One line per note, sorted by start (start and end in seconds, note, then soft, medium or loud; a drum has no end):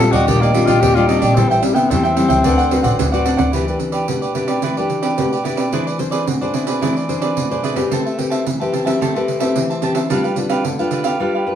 0.00 0.25 A#2 medium
0.00 0.50 G3 medium
0.00 0.50 D4 medium
0.00 0.50 F4 medium
0.00 0.13 A4 medium
0.11 0.24 D#2 medium
0.11 0.28 F#4 medium
0.11 0.26 G4 medium
0.11 0.26 D5 medium
0.11 0.26 D#5 medium
0.11 pandeiro medium
0.26 0.62 A#1 medium
0.26 0.79 D#3 medium
0.26 0.40 D4 soft
0.26 0.43 G4 medium
0.26 0.40 G4 medium
0.26 0.40 D5 medium
0.26 0.41 D#5 medium
0.26 pandeiro medium
0.41 0.54 A#3 medium
0.41 0.67 G4 medium
0.41 0.66 D5 medium
0.41 0.67 D#5 medium
0.41 pandeiro soft
0.53 0.80 G3 medium
0.53 0.67 D4 loud
0.53 0.80 D4 medium
0.53 0.80 F4 medium
0.53 pandeiro medium
0.66 0.79 A#1 medium
0.66 0.82 F4 medium
0.66 0.94 G4 medium
0.66 0.94 D5 medium
0.66 0.94 D#5 medium
0.66 pandeiro medium
0.80 1.04 D#2 medium
0.80 1.33 A#2 medium
0.80 0.96 G4 loud
0.80 pandeiro medium
0.95 1.32 G3 medium
0.95 1.32 D4 medium
0.95 1.08 F4 medium
0.95 1.32 F4 medium
0.95 1.08 G4 medium
0.95 1.08 D5 medium
0.95 1.08 D#5 medium
0.95 pandeiro soft
1.07 1.21 D4 soft
1.07 1.21 D#4 medium
1.07 1.21 G4 medium
1.07 1.20 D5 medium
1.07 1.21 D#5 medium
1.07 pandeiro medium
1.20 1.35 A#1 medium
1.20 1.36 D4 medium
1.20 1.35 G4 medium
1.20 1.34 D5 medium
1.20 1.35 D#5 medium
1.20 pandeiro medium
1.34 1.59 A1 medium
1.34 1.88 A2 medium
1.34 1.71 G3 medium
1.34 1.50 C4 medium
1.34 1.71 C4 medium
1.34 1.71 E4 medium
1.34 1.49 A4 medium
1.34 1.49 C5 medium
1.34 1.49 E5 medium
1.34 pandeiro medium
1.38 1.49 G5 medium
1.49 1.62 E3 medium
1.49 1.62 C5 medium
1.49 1.62 E5 medium
1.49 1.63 G5 medium
1.49 pandeiro soft
1.61 1.76 G3 medium
1.61 muted cavaquinho stroke soft
1.61 pandeiro medium
1.74 1.91 B3 medium
1.74 1.89 C5 medium
1.74 1.89 E5 medium
1.74 1.88 G5 medium
1.74 pandeiro medium
1.90 2.25 E2 medium
1.90 2.42 E3 medium
1.90 2.06 G3 medium
1.90 3.40 C4 medium
1.90 2.07 C4 soft
1.90 2.07 E4 medium
1.90 2.03 A4 medium
1.90 2.03 C5 soft
1.90 2.03 E5 soft
1.90 2.02 G5 medium
1.90 pandeiro medium
2.03 2.15 C5 medium
2.03 2.16 E5 medium
2.03 2.16 G5 medium
2.03 pandeiro soft
2.16 2.42 G3 medium
2.16 2.43 C4 medium
2.16 2.43 E4 medium
2.16 muted cavaquinho stroke soft
2.16 pandeiro medium
2.28 2.41 C#2 medium
2.28 2.42 C5 medium
2.28 2.43 E5 medium
2.28 2.42 G5 medium
2.28 pandeiro medium
2.43 2.79 D2 medium
2.43 2.96 D3 medium
2.43 2.61 C4 medium
2.43 2.57 D4 medium
2.43 2.61 F#4 medium
2.43 2.61 B4 medium
2.43 2.57 C5 medium
2.43 2.57 D5 medium
2.43 2.56 F#5 medium
2.43 pandeiro medium
2.58 2.83 C5 medium
2.58 2.82 D5 medium
2.58 2.82 F#5 medium
2.58 pandeiro soft
2.71 3.08 C4 medium
2.71 3.08 F#4 medium
2.71 3.09 B4 medium
2.71 pandeiro medium
2.83 2.96 A1 medium
2.83 3.11 C5 medium
2.83 3.11 D5 medium
2.83 3.11 F#5 medium
2.83 pandeiro medium
2.99 3.22 D2 medium
2.99 3.51 A2 medium
2.99 pandeiro medium
3.12 3.50 C4 medium
3.12 3.50 F#4 medium
3.12 3.50 B4 medium
3.12 3.25 C5 medium
3.12 3.25 D5 medium
3.12 3.25 F#5 medium
3.12 pandeiro soft
3.25 3.38 D4 soft
3.25 3.38 C5 soft
3.25 3.37 D5 medium
3.25 3.36 F#5 medium
3.25 pandeiro medium
3.37 3.51 D2 medium
3.37 3.52 C5 medium
3.37 3.52 D5 medium
3.37 3.51 F#5 medium
3.37 pandeiro medium
3.52 4.06 E3 medium
3.52 3.63 D4 soft
3.52 3.65 E4 medium
3.52 3.66 G4 medium
3.52 3.63 G4 soft
3.52 3.66 B4 medium
3.52 3.63 B4 soft
3.52 3.65 D5 medium
3.52 pandeiro medium
3.66 4.04 D4 soft
3.66 3.78 G4 soft
3.66 4.05 G4 soft
3.66 3.79 B4 soft
3.66 4.05 B4 medium
3.66 3.79 D5 soft
3.66 pandeiro soft
3.79 muted cavaquinho stroke soft
3.79 pandeiro soft
3.92 4.07 G4 soft
3.92 4.06 B4 soft
3.92 4.06 D5 medium
3.92 pandeiro medium
4.08 4.60 B2 medium
4.08 4.31 D4 soft
4.08 4.31 G4 soft
4.08 4.32 B4 soft
4.08 muted cavaquinho stroke soft
4.08 pandeiro medium
4.22 4.34 G4 soft
4.22 4.34 B4 soft
4.22 4.34 D5 soft
4.22 pandeiro soft
4.34 4.61 D4 soft
4.34 4.48 E4 soft
4.34 4.48 G4 soft
4.34 4.61 G4 soft
4.34 4.47 B4 soft
4.34 4.61 B4 medium
4.34 4.46 D5 soft
4.34 pandeiro soft
4.48 4.62 G4 soft
4.48 4.61 B4 medium
4.48 4.61 D5 medium
4.48 pandeiro medium
4.62 5.15 E3 medium
4.62 4.75 E4 medium
4.62 4.76 G4 medium
4.62 4.76 B4 medium
4.62 4.76 D5 medium
4.62 pandeiro medium
4.77 5.14 D4 soft
4.77 5.14 G4 medium
4.77 5.02 G4 soft
4.77 5.01 B4 soft
4.77 5.14 B4 medium
4.77 5.01 D5 soft
4.77 pandeiro soft
4.90 pandeiro soft
5.02 5.30 G4 soft
5.02 5.30 B4 soft
5.02 5.29 D5 soft
5.02 pandeiro medium
5.18 5.70 B2 medium
5.18 5.34 D4 soft
5.18 5.34 G4 soft
5.18 5.34 B4 medium
5.18 pandeiro medium
5.32 5.43 G4 soft
5.32 5.44 B4 soft
5.32 5.44 D5 soft
5.32 pandeiro soft
5.44 5.62 D4 soft
5.44 5.57 E4 soft
5.44 5.57 G4 medium
5.44 5.62 G4 soft
5.44 5.63 B4 soft
5.44 5.57 B4 medium
5.44 5.56 D5 medium
5.44 pandeiro soft
5.57 5.71 G4 soft
5.57 5.71 B4 soft
5.57 5.70 D5 soft
5.57 pandeiro medium
5.72 6.24 E3 medium
5.72 5.88 D4 soft
5.72 5.85 E4 medium
5.72 5.89 G#4 soft
5.72 5.85 G#4 medium
5.72 5.85 B4 medium
5.72 5.89 C5 medium
5.72 5.85 D5 medium
5.72 pandeiro medium
5.86 5.98 G#4 soft
5.86 5.98 B4 soft
5.86 5.99 D5 soft
5.86 pandeiro soft
5.98 6.36 D4 soft
5.98 6.36 G#4 soft
5.98 6.36 C5 soft
5.98 muted cavaquinho stroke soft
5.98 pandeiro soft
6.11 6.26 G#4 soft
6.11 6.25 B4 soft
6.11 6.25 D5 medium
6.11 pandeiro medium
6.27 6.79 B2 medium
6.27 muted cavaquinho stroke soft
6.27 pandeiro medium
6.41 6.78 D4 medium
6.41 6.78 G#4 soft
6.41 6.53 G#4 soft
6.41 6.53 B4 soft
6.41 6.78 C5 medium
6.41 6.54 D5 soft
6.41 pandeiro soft
6.54 6.67 E4 soft
6.54 6.67 G#4 soft
6.54 6.66 B4 soft
6.54 6.66 D5 soft
6.54 pandeiro medium
6.67 6.81 G#4 soft
6.67 6.81 B4 medium
6.67 6.80 D5 medium
6.67 pandeiro medium
6.81 7.34 E3 medium
6.81 7.05 D4 soft
6.81 6.94 E4 medium
6.81 7.05 G#4 soft
6.81 6.95 G#4 medium
6.81 6.95 B4 medium
6.81 7.05 C5 medium
6.81 6.95 D5 medium
6.81 pandeiro medium
6.96 7.22 G#4 soft
6.96 7.21 B4 soft
6.96 7.20 D5 soft
6.96 pandeiro soft
7.08 7.46 D4 soft
7.08 7.46 G#4 soft
7.08 7.46 C5 medium
7.08 pandeiro soft
7.21 7.49 G#4 soft
7.21 7.49 B4 medium
7.21 7.49 D5 medium
7.21 pandeiro medium
7.36 7.89 B2 medium
7.36 pandeiro medium
7.50 7.74 D4 soft
7.50 7.74 G#4 soft
7.50 7.63 G#4 soft
7.50 7.63 B4 soft
7.50 7.74 C5 soft
7.50 7.64 D5 soft
7.50 pandeiro soft
7.63 7.76 E4 medium
7.63 7.76 G#4 medium
7.63 7.75 B4 medium
7.63 7.75 D5 medium
7.63 pandeiro soft
7.76 8.14 C4 medium
7.76 8.14 G4 medium
7.76 7.90 G#4 soft
7.76 7.90 B4 soft
7.76 8.14 B4 medium
7.76 7.90 D5 soft
7.76 pandeiro medium
7.91 8.44 A3 medium
7.91 8.04 G4 medium
7.91 8.04 C5 medium
7.91 8.04 E5 medium
7.91 8.03 A5 medium
7.91 pandeiro medium
8.05 8.17 C5 soft
8.05 8.17 E5 soft
8.05 8.17 A5 soft
8.05 pandeiro soft
8.18 8.44 C4 soft
8.18 8.44 G4 soft
8.18 8.45 B4 soft
8.18 muted cavaquinho stroke soft
8.18 pandeiro soft
8.30 8.45 C5 soft
8.30 8.45 E5 medium
8.30 8.44 A5 medium
8.30 pandeiro soft
8.46 8.98 E3 medium
8.46 muted cavaquinho stroke soft
8.46 pandeiro medium
8.60 8.83 C4 medium
8.60 8.84 G4 medium
8.60 8.84 B4 medium
8.60 8.72 C5 soft
8.60 8.72 E5 soft
8.60 8.73 A5 soft
8.60 pandeiro soft
8.72 8.86 G4 soft
8.72 8.85 C5 soft
8.72 8.85 E5 soft
8.72 8.84 A5 soft
8.72 pandeiro medium
8.85 9.10 C4 medium
8.85 9.10 G4 medium
8.85 9.10 B4 medium
8.85 9.00 C5 soft
8.85 8.99 E5 medium
8.85 8.99 A5 medium
8.85 pandeiro medium
9.01 9.53 A3 medium
9.01 9.14 G4 medium
9.01 9.14 C5 medium
9.01 9.14 E5 medium
9.01 9.14 A5 medium
9.01 pandeiro medium
9.15 9.38 C4 medium
9.15 9.39 G4 medium
9.15 9.39 B4 medium
9.15 9.40 C5 soft
9.15 9.39 E5 soft
9.15 9.38 A5 soft
9.15 pandeiro soft
9.28 pandeiro soft
9.40 9.78 C4 medium
9.40 9.78 G4 medium
9.40 9.79 B4 medium
9.40 9.68 C5 soft
9.40 9.68 E5 medium
9.40 9.67 A5 medium
9.40 pandeiro medium
9.56 10.08 E3 medium
9.56 pandeiro medium
9.70 9.82 C5 soft
9.70 9.82 E5 soft
9.70 9.82 A5 soft
9.70 pandeiro soft
9.82 9.99 C4 soft
9.82 9.95 G4 medium
9.82 9.99 G4 soft
9.82 9.99 B4 soft
9.82 9.96 C5 medium
9.82 9.95 E5 medium
9.82 9.93 A5 medium
9.82 pandeiro soft
9.95 10.10 C5 soft
9.95 10.09 E5 soft
9.95 10.09 A5 soft
9.95 pandeiro medium
10.10 10.63 G3 medium
10.10 10.23 D4 medium
10.10 10.34 D4 soft
10.10 10.34 F4 soft
10.10 10.23 G4 medium
10.10 10.23 B4 medium
10.10 10.34 B4 soft
10.10 10.23 F5 medium
10.10 pandeiro medium
10.24 10.36 G4 soft
10.24 10.36 B4 soft
10.24 10.36 F5 soft
10.24 pandeiro soft
10.36 10.74 D4 soft
10.36 10.75 F4 soft
10.36 10.75 B4 medium
10.36 muted cavaquinho stroke soft
10.36 pandeiro soft
10.49 10.63 G4 soft
10.49 10.64 B4 medium
10.49 10.63 F5 medium
10.49 pandeiro medium
10.64 11.17 D3 medium
10.64 muted cavaquinho stroke soft
10.64 pandeiro medium
10.79 11.16 D4 medium
10.79 11.16 F4 soft
10.79 10.91 G4 soft
10.79 11.16 B4 medium
10.79 10.92 B4 soft
10.79 10.92 F5 soft
10.79 pandeiro soft
10.91 11.05 D4 soft
10.91 11.05 G4 soft
10.91 11.04 B4 soft
10.91 11.03 F5 soft
10.91 pandeiro medium
11.04 11.19 G4 soft
11.04 11.19 B4 medium
11.04 11.18 F5 medium
11.04 pandeiro medium
11.20 11.55 G3 medium
11.20 11.43 D4 soft
11.20 11.33 D4 medium
11.20 11.43 F4 soft
11.20 11.33 G4 medium
11.20 11.43 B4 medium
11.20 11.33 B4 medium
11.20 11.33 F5 medium
11.35 11.55 G4 soft
11.35 11.55 B4 soft
11.35 11.55 F5 soft
11.46 11.55 D4 soft
11.46 11.55 F4 soft
11.46 11.55 B4 soft